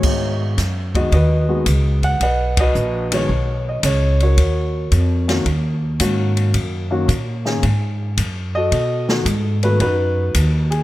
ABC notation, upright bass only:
X:1
M:4/4
L:1/8
Q:"Swing" 1/4=111
K:Ebm
V:1 name="Upright bass" clef=bass
A,,2 G,,2 E,,2 D,,2 | C,,2 B,,,2 C,,2 D,,2 | E,,2 F,,2 E,,2 A,,2 | G,,2 B,,2 A,,2 G,,2 |
=B,,2 A,,2 ^F,,2 ^D,,2 |]